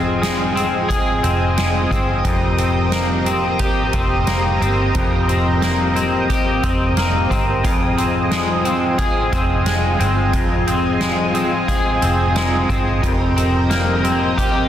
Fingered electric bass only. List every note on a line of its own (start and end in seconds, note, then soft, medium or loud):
0.00 1.20 F1 medium
1.24 1.88 F1 medium
1.91 2.23 G1 medium
2.25 3.89 F1 medium
3.93 4.58 F1 medium
4.61 4.93 G1 medium
4.96 6.60 F1 medium
6.64 7.28 F1 medium
7.31 7.64 G1 medium
7.64 9.29 F1 medium
9.33 9.97 F1 medium
10.00 10.34 G1 medium
10.34 11.98 F1 medium
12.02 12.67 F1 medium
12.70 13.02 G1 medium
13.04 14.68 F1 loud